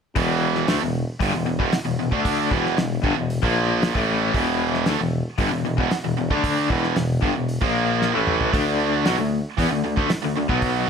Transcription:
0.16 0.65 E1 medium
0.16 0.67 E2 medium
0.16 0.68 B2 medium
0.16 0.68 E3 loud
0.16 kick loud
0.16 open hi-hat medium
0.55 snare soft
0.68 0.81 D2 medium
0.68 0.81 D3 medium
0.68 0.81 A3 loud
0.68 snare loud
0.68 open hi-hat medium
0.81 1.07 E1 medium
0.81 1.02 E2 medium
0.81 1.03 B2 medium
1.20 1.33 G1 medium
1.20 1.33 G2 medium
1.20 1.33 D3 loud
1.20 kick loud
1.20 open hi-hat medium
1.34 1.46 E1 medium
1.34 1.45 E2 medium
1.34 1.45 B2 medium
1.46 1.59 E1 medium
1.46 1.58 E2 medium
1.46 1.59 B2 medium
1.59 1.72 E1 medium
1.59 1.71 E2 medium
1.59 1.73 B2 medium
1.59 kick medium
1.72 1.86 E1 soft
1.72 muted overdriven electric guitar stroke medium
1.72 muted distorted electric guitar stroke medium
1.72 snare loud
1.72 open hi-hat medium
1.85 1.99 E1 medium
1.85 1.98 E2 medium
1.85 1.98 B2 medium
1.99 2.11 E1 medium
1.99 2.12 E2 medium
1.99 2.11 B2 medium
2.11 2.49 D2 medium
2.11 2.50 D3 medium
2.11 2.51 A3 medium
2.11 2.51 D4 medium
2.11 kick loud
2.25 kick medium
2.25 open hi-hat medium
2.51 2.76 E1 medium
2.51 2.76 E2 medium
2.51 2.76 B2 loud
2.51 2.77 E3 loud
2.51 kick loud
2.66 snare soft
2.77 3.03 E1 medium
2.77 2.98 E2 medium
2.77 2.98 B2 medium
2.77 snare loud
2.77 open hi-hat medium
3.02 3.16 G1 loud
3.02 3.15 G2 medium
3.02 3.16 D3 medium
3.02 kick loud
3.16 3.41 E1 medium
3.16 3.37 E2 medium
3.16 3.37 B2 medium
3.30 open hi-hat soft
3.42 3.92 A#1 medium
3.42 3.93 A#2 medium
3.42 3.94 F3 medium
3.42 3.95 A#3 medium
3.42 kick loud
3.83 snare loud
3.83 open hi-hat medium
3.93 4.32 A1 loud
3.93 4.33 A2 medium
3.93 4.33 E3 medium
3.93 4.34 A3 medium
3.93 kick loud
4.34 4.83 E1 medium
4.34 4.86 E2 loud
4.34 4.86 B2 loud
4.34 4.86 E3 loud
4.34 kick loud
4.34 open hi-hat medium
4.74 snare soft
4.86 4.99 D2 medium
4.86 4.99 D3 loud
4.86 5.00 A3 loud
4.86 snare loud
4.86 open hi-hat medium
4.99 5.24 E1 medium
4.99 5.21 E2 medium
4.99 5.21 B2 medium
5.38 5.51 G1 medium
5.38 5.51 G2 medium
5.38 5.51 D3 medium
5.38 kick loud
5.38 open hi-hat medium
5.52 5.64 E1 medium
5.52 5.64 E2 medium
5.52 5.64 B2 medium
5.65 5.77 E1 medium
5.65 5.76 E2 medium
5.65 5.77 B2 medium
5.77 5.90 E1 medium
5.77 5.90 E2 medium
5.77 5.91 B2 loud
5.77 kick medium
5.91 6.03 E1 soft
5.91 muted overdriven electric guitar stroke medium
5.91 muted distorted electric guitar stroke medium
5.91 snare loud
5.91 open hi-hat medium
6.04 6.17 E1 medium
6.04 6.18 E2 medium
6.04 6.17 B2 medium
6.18 6.30 E1 medium
6.18 6.31 E2 medium
6.18 6.30 B2 medium
6.30 6.69 D3 medium
6.30 6.69 A3 medium
6.30 6.70 D4 medium
6.30 kick loud
6.44 kick medium
6.44 open hi-hat medium
6.69 6.95 E1 medium
6.69 6.95 E2 medium
6.69 6.95 B2 medium
6.69 6.96 E3 loud
6.69 kick loud
6.83 snare soft
6.96 7.21 E1 medium
6.96 7.17 E2 medium
6.96 7.17 B2 medium
6.96 snare loud
6.96 open hi-hat medium
7.21 7.35 G1 medium
7.21 7.34 G2 medium
7.21 7.34 D3 loud
7.21 kick loud
7.36 7.60 E1 medium
7.36 7.57 E2 medium
7.36 7.57 B2 medium
7.49 open hi-hat medium
7.62 8.10 A#1 medium
7.62 8.13 A#2 medium
7.62 8.14 F3 medium
7.62 8.14 A#3 loud
7.62 kick loud
8.02 snare medium
8.14 8.51 A1 medium
8.14 8.52 A2 medium
8.14 8.53 E3 medium
8.14 8.53 A3 medium
8.27 mid tom medium
8.41 floor tom medium
8.53 9.02 D2 medium
8.53 9.05 D3 medium
8.53 9.05 A3 medium
8.53 9.05 D4 loud
8.53 kick loud
8.53 open hi-hat medium
9.05 9.18 B1 medium
9.05 9.18 B2 medium
9.05 9.18 F#3 medium
9.05 snare loud
9.05 open hi-hat medium
9.20 9.43 D2 medium
9.20 9.40 D3 medium
9.20 9.40 A3 medium
9.58 9.70 E2 medium
9.58 9.70 E3 medium
9.58 9.71 B3 medium
9.58 kick medium
9.58 open hi-hat medium
9.71 9.83 D2 medium
9.71 9.84 D3 medium
9.71 9.85 A3 medium
9.85 9.96 D2 medium
9.85 9.97 D3 medium
9.85 9.98 A3 medium
9.97 10.09 D2 medium
9.97 10.10 D3 medium
9.97 10.10 A3 loud
9.97 kick loud
10.09 10.22 D2 soft
10.09 muted distorted electric guitar stroke medium
10.09 muted overdriven electric guitar stroke medium
10.09 snare loud
10.09 open hi-hat medium
10.24 10.36 D2 medium
10.24 10.36 D3 medium
10.24 10.37 A3 medium
10.37 10.49 D2 medium
10.37 10.48 D3 medium
10.37 10.49 A3 medium
10.48 10.86 B1 medium
10.48 10.87 B2 medium
10.48 10.88 F#3 medium
10.48 10.88 B3 medium
10.48 kick loud
10.62 kick loud
10.62 open hi-hat medium

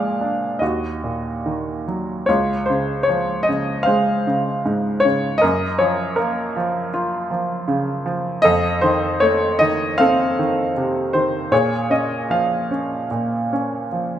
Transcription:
0.00 0.58 A#2 medium
0.00 0.58 F3 soft
0.00 0.59 G#3 soft
0.00 0.57 G#4 medium
0.00 0.62 D5 medium
0.00 0.62 F5 medium
0.21 0.60 D4 soft
0.59 2.24 D#2 soft
0.59 2.25 F#4 soft
0.59 1.83 D#5 medium
1.04 2.25 A#2 soft
1.46 2.26 D#3 soft
1.88 2.27 F#3 soft
2.26 5.39 C#2 medium
2.26 3.83 F4 soft
2.26 2.68 C#5 medium
2.66 3.47 C#3 soft
2.66 3.08 C5 medium
3.03 3.47 C#5 medium
3.10 4.62 F3 soft
3.43 3.86 D#5 medium
3.49 4.26 C#3 soft
3.83 5.38 C5 medium
3.83 5.06 F5 medium
3.87 5.39 G#3 medium
4.27 5.03 C#3 soft
4.66 5.40 G#2 soft
5.00 5.42 C#5 medium
5.05 5.42 C#3 soft
5.38 6.14 A#4 medium
5.38 5.79 D#5 medium
5.42 8.40 F#2 medium
5.79 6.55 F3 soft
5.79 6.19 C#5 medium
6.16 7.65 A#3 soft
6.16 6.88 A#4 medium
6.56 7.29 F3 soft
6.94 8.41 F4 medium
7.31 8.04 F3 soft
7.68 8.42 C#3 medium
8.06 8.43 F3 soft
8.42 11.48 F2 medium
8.42 9.95 A4 medium
8.42 8.83 D#5 medium
8.81 9.59 D#3 soft
8.81 9.22 C5 medium
9.20 10.73 A3 medium
9.20 9.61 C#5 medium
9.59 10.38 D#3 medium
9.59 10.00 D#5 medium
9.98 11.49 C4 medium
9.98 11.49 A4 medium
9.98 11.10 F5 medium
10.39 11.13 D#3 soft
10.77 11.50 C3 soft
11.13 11.51 D#3 soft
11.13 11.53 C5 medium
11.52 13.09 A#2 medium
11.52 13.06 G#4 soft
11.52 11.92 C#5 medium
11.90 12.69 C#4 soft
11.90 12.31 D#5 medium
12.30 13.88 F3 soft
12.30 13.07 F5 medium
12.71 13.51 C#4 soft
13.11 14.19 A#2 soft
13.53 14.19 C#4 soft
13.92 14.19 F3 soft

